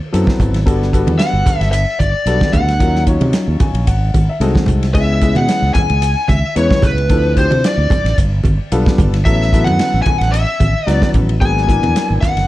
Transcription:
0.12 F#2 F#3 B3 C4 E4 A4, hi-hat pedal, ride
0.27 kick, snare, high conga
0.39 G#1, kick, hi-hat pedal, ride, high conga, low conga
0.54 snare, ride
0.66 G1 G3 B3 D4 F#4 A4, kick, hi-hat pedal, ride
0.82 snare
0.93 G3 B3 D4 F#4 A4, kick, hi-hat pedal, ride
1.07 E2, ride, high conga
1.19 F#5, snare, hi-hat pedal, ride
1.33 G1
1.46 kick, snare, hi-hat pedal, ride, high conga, low conga
1.61 G1, snare, ride
1.72 E5, hi-hat pedal, ride
1.99 G1 D5, kick, hi-hat pedal, ride, high conga
2.26 B1 G3 B3 D4 F#4 A4, hi-hat pedal, ride
2.41 kick, snare, high conga
2.52 D2 F#5, kick, hi-hat pedal, ride, high conga, low conga
2.68 snare, ride
2.80 D#2 F#3 C#4 D#4 F4 A#4, kick, hi-hat pedal, ride
2.96 snare
3.07 F#3 C#4 D#4 F4 C#5, kick, hi-hat pedal, ride
3.21 C3, ride, high conga
3.33 snare, hi-hat pedal, ride
3.48 D#2
3.60 G#5, muted fretless electric bass stroke, kick, hi-hat pedal, ride, high conga, low conga
3.74 A#1, ride
3.87 G#1 F#5, kick, hi-hat pedal, ride
4.14 G#1, kick, hi-hat pedal, ride, high conga
4.29 E5
4.40 C2 G#3 C4 D#4 F#4 A4 D#5, hi-hat pedal, ride
4.55 kick, snare, high conga
4.66 C2, kick, hi-hat pedal, ride, low conga
4.83 snare, ride
4.94 C#2 G#3 B3 C#4 E4 G#4 E5, kick, hi-hat pedal, ride
5.21 G#3 B3 C#4 E4 G#4, kick, hi-hat pedal, ride
5.35 B2 F#5, ride, high conga
5.49 snare, hi-hat pedal, ride
5.62 C#2
5.74 G#5, kick, hi-hat pedal, ride, high conga, low conga
5.90 C#2, ride
6.02 hi-hat pedal, ride
6.28 C#2 E5, kick, hi-hat pedal, ride, high conga
6.55 E2 G#3 B3 C#4 E4 B4 C#5, hi-hat pedal, ride
6.70 kick, snare, high conga
6.82 C#2 B4, kick, hi-hat pedal, ride, high conga, low conga
6.98 ride
7.09 D2 F3 C4 D4 E4 A4, kick, hi-hat pedal, ride
7.37 F3 C4 D4 E4 G4 C5, kick, hi-hat pedal, ride
7.51 C3, ride, high conga
7.64 D5, snare, hi-hat pedal, ride
7.78 D2
7.90 kick, hi-hat pedal, ride, high conga, low conga
8.04 A1, snare, ride
8.18 G1, kick, hi-hat pedal, ride
8.44 G1, kick, hi-hat pedal, ride, high conga
8.72 B1 G3 B3 D4 F4 A4, hi-hat pedal, ride
8.86 kick, snare, high conga
8.98 G1, kick, hi-hat pedal, ride, high conga, low conga
9.14 snare, ride
9.25 A1 F#3 B3 C#4 E4 A4 E5, kick, hi-hat pedal, ride
9.42 snare
9.53 F#3 B3 C#4 E4 A4, kick, hi-hat pedal, ride
9.64 F#2 F#5, ride, high conga
9.79 snare, hi-hat pedal, ride
9.94 A1
10.02 G#5, kick, hi-hat pedal, ride
10.06 high conga, low conga
10.18 A1 F#5, snare, ride
10.32 E5, hi-hat pedal, ride
10.60 A1, kick, hi-hat pedal, ride, high conga
10.87 C#2 F#3 B3 C#4 E4 F#4 D5, snare, hi-hat pedal, ride
11.02 kick, snare, high conga
11.14 A1, kick, hi-hat pedal, ride, high conga, low conga
11.29 ride
11.40 G#1 F#3 A#3 B3 D4 G#4 G#5, kick, hi-hat pedal, ride
11.58 snare
11.67 F#3 A#3 B3 D4 E4, kick, hi-hat pedal, ride
11.83 E2, ride, high conga
11.96 snare, hi-hat pedal, ride
12.10 G#1
12.21 F#5, kick, snare, hi-hat pedal, ride, high conga, low conga
12.36 F#1, snare, ride

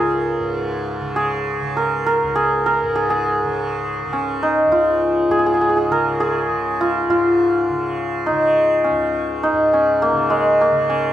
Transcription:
Already playing: C#2 G#2 C#3 A#3 C#4 D#4 F4 G#4 A#4
0.39 G#2
1.01 C#3
1.16 G#4
1.60 C#3
1.77 A#4
2.06 A#4
2.23 C#2
2.35 G#4
2.66 A#4
2.83 G#2
2.96 G#4
3.10 G#4
3.44 C#3
4.04 C#3
4.13 C#4
4.43 D#4
4.67 C#2
4.72 F4
5.28 G#2 G#4
5.39 G#4
5.46 G#4
5.54 G#4
5.61 G#4
5.69 G#4
5.77 G#4
5.90 C#3 A#4
6.20 G#4
6.49 C#3
6.81 F4
7.08 G#2 F4
7.69 C#3
8.26 C#3 D#4
8.84 C#4
8.91 C#2
9.43 D#4
9.52 G#2
9.73 C#4
10.02 A#3
10.12 C#3
10.30 G#3
10.61 A#3
10.72 C#3
10.90 C#4

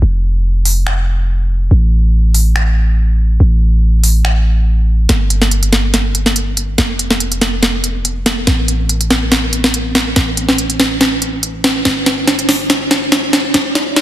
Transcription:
0.02 F1
0.65 open hi-hat
0.87 finger snap
1.71 A1
2.34 open hi-hat
2.56 finger snap
3.40 A1
4.04 open hi-hat
4.25 finger snap
5.09 G1, snare, closed hi-hat
5.30 closed hi-hat
5.42 snare
5.51 closed hi-hat
5.63 closed hi-hat
5.73 snare, closed hi-hat
5.94 snare, closed hi-hat
6.15 closed hi-hat
6.26 snare
6.36 closed hi-hat
6.57 closed hi-hat
6.78 F1, snare, closed hi-hat
6.99 closed hi-hat
7.11 snare
7.20 closed hi-hat
7.32 closed hi-hat
7.41 snare, closed hi-hat
7.63 snare, closed hi-hat
7.84 closed hi-hat
8.05 closed hi-hat
8.26 snare, closed hi-hat
8.47 A1, snare, closed hi-hat
8.68 closed hi-hat
8.89 closed hi-hat
9.01 closed hi-hat
9.11 snare, closed hi-hat
9.32 snare, closed hi-hat
9.53 closed hi-hat
9.64 snare
9.74 closed hi-hat
9.95 snare, closed hi-hat
10.16 A1, snare, closed hi-hat
10.37 closed hi-hat
10.49 snare
10.58 closed hi-hat
10.70 closed hi-hat
10.80 snare, closed hi-hat
11.01 snare, closed hi-hat
11.22 closed hi-hat
11.43 closed hi-hat
11.64 snare, closed hi-hat
11.85 G1, snare, closed hi-hat
12.06 snare, closed hi-hat
12.27 snare, closed hi-hat
12.39 closed hi-hat
12.49 snare, open hi-hat
12.70 snare, closed hi-hat
12.91 snare, closed hi-hat
13.12 snare, closed hi-hat
13.33 snare, closed hi-hat
13.54 F1, snare, closed hi-hat
13.75 snare, closed hi-hat
13.96 snare, closed hi-hat

